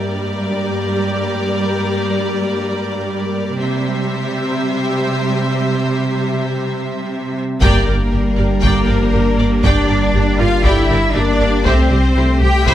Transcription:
Already playing: G2 G3 A#3 G4 A#4 D5
3.59 C3 G3 C4 G4 C5 E5
7.61 G1 G3 A#3 D4 G4 A#4 D5 G5, taiko
7.86 G1 G4 A#4 D5
8.12 G1 G4 A#4
8.36 G1 G4 A#4 D5
8.62 G1 D3 A#3 G4 A#4 D5 G5, taiko
8.87 G1 F3 G4 A#4 D5
9.12 G1 G3 G4 A#4
9.39 G1 G4 A#4 D5
9.64 G1 A#3 D4 G4 D5 G5, taiko
9.89 G1 G4 A#4 D5
10.14 G1 A#3 G4 A#4
10.39 G1 F4 G4 A#4 D5 F5
10.64 G1 A3 E4 G4 D5 E5 G5, taiko
10.90 G1 G3 G4 A#4 D5
11.15 G1 A#3 D4 G4 A#4 D5
11.40 G1 G4 A#4 D5
11.65 C2 G3 A3 C4 G4 C5 E5, taiko
11.91 C2 G3 G4 C5
12.15 C2 A3 E4 G4
12.41 C2 G4 C5 G5
12.66 C2 G3 E4 G4 C5 E5, taiko

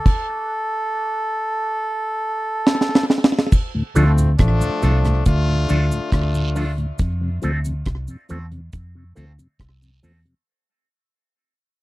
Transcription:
Already playing: A4
0.06 kick, crash
2.67 snare
2.81 snare
2.95 snare
3.10 snare
3.24 snare
3.39 snare
3.52 kick, crash, cabasa
3.75 D2 A2
3.95 D2 F3 A3 C4 D4 F4 A4, closed hi-hat, cabasa
4.18 D2 A2, closed hi-hat, cabasa
4.39 A1 F3 A3 D4, kick, cross-stick, closed hi-hat
4.61 D2 A2, cabasa
4.82 C2 F3 A3 D4 F4 A4, closed hi-hat, cabasa
5.04 D2 A2, cross-stick, closed hi-hat
5.25 D2 A3 D4 F4, kick, closed hi-hat, cabasa
5.48 D2 A2
5.69 D2 F3 A3 D4 F4 A4, closed hi-hat, cabasa
5.92 D2 A2, closed hi-hat, cabasa
6.12 D2 A3 D4 F4, kick, cross-stick, closed hi-hat, long guiro
6.34 D2 A2, cabasa
6.55 F3 A3 D4 F4 A4, open hi-hat, cabasa
6.77 D2 A2, closed hi-hat
6.98 F2, kick, closed hi-hat, cabasa
7.21 F2 C3
7.42 D2 F3 A3 C4 F4 A4, closed hi-hat, cabasa
7.65 F2 C3, closed hi-hat, cabasa
7.86 C2, kick, cross-stick, closed hi-hat
8.08 F2 C3, cabasa
8.29 E2 F3 A3 C4 F4 A4, closed hi-hat, cabasa
8.52 F2 C3, closed hi-hat
8.73 F2, kick, closed hi-hat, cabasa
8.95 F2 C3
9.15 D2 F3 A3 C4 F4 A4, closed hi-hat, cabasa
9.39 F2 C3, closed hi-hat, cabasa
9.59 C2, kick, cross-stick, closed hi-hat, long guiro
9.82 F2 C3, cabasa
10.03 E2 F3 A3 C4 F4 A4, open hi-hat, cabasa
10.25 F2 C3, closed hi-hat

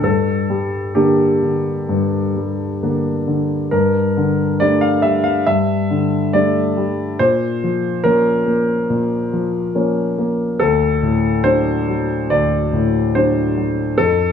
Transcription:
0.03 G2 A4
0.50 G3
0.95 D3 A#3 D4 G4
1.43 D3
1.89 G2
2.36 G3
2.83 D3 A#3 D4
3.28 D3
3.71 G2 A#4
4.17 D3
4.60 G3 A3 D4 D5
4.81 F5
5.02 G3 E5
5.24 F5
5.46 G2 E5
5.91 D3
6.33 G3 A3 D4 D5
6.77 G3
7.19 A#2 C5
7.64 F3
8.04 F3 A#3 C#4 A#4
8.46 A#3
8.90 A#2
9.33 F3
9.75 F3 A#3 C#4
10.19 A#3
10.60 D2 A4
11.03 A2
11.44 F#3 D4 C5
11.88 F#3
12.30 D2 D5
12.73 A2
13.15 F#3 D4 C5
13.58 F#3
13.98 F2 A4

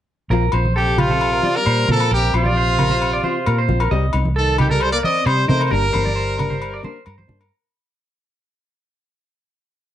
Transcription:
0.30 A#1 F3 C4 F4 A#4
0.52 A#1 C4 F4 C5, low agogo
0.65 high conga
0.76 C3 G4 A4
0.97 C4 F4 G4, low conga, low agogo
1.02 C3
1.10 A4, low conga
1.21 low agogo
1.33 A#4
1.43 C4 F4 D5, high conga
1.56 G3 A#4
1.66 A#2 C5, low agogo
1.88 A#2 C4 F4 A4 A#4, high conga, low conga
1.93 F3
2.00 A#4, low agogo
2.11 A#1 C3 G4 A#4
2.34 A#1 C3 C4 F4 C5, low agogo
2.45 D5, high conga
2.57 C5
2.79 C4 F4 A#4, low conga, low agogo
2.90 C5, low conga
3.02 low agogo
3.13 D5
3.23 C4 F4 C5, high conga
3.46 A#2 A#4, low agogo
3.58 C5
3.68 A#1 C4 F4, high conga, low conga
3.80 A#4, low agogo
3.91 C2 G3 C4 D#5, muted nylon-string guitar stroke
4.13 C2 C4 D#4, muted clean electric guitar stroke, low agogo
4.25 high conga
4.36 D#3 A4
4.58 D#3 C4 D#4 G4, low conga, low agogo
4.70 G3 A4 A#4, low conga
4.80 G3 C5, low agogo
4.92 A#3 A#4 D5
5.03 C4 D5 D#5, high conga
5.26 C3 G3 C5, low agogo
5.48 C3 A3 C4 D#4 A#4 C5, high conga, low conga
5.60 A#4 C5, low agogo
5.65 A3
5.70 G1 G3 A#3 D4 A#4
5.93 G1 A#3 D4 C5, high conga, low agogo
6.05 D5, high conga
6.16 C5
6.38 A#3 D4 A#4, low conga, low agogo
6.50 C5, low conga
6.62 low agogo
6.74 D5
6.83 A#3 D4 C5, high conga
7.06 G2 A#4, low agogo
7.18 C5, high conga
7.28 G2 A#3 D4, high conga, low conga
7.41 A#4, low agogo

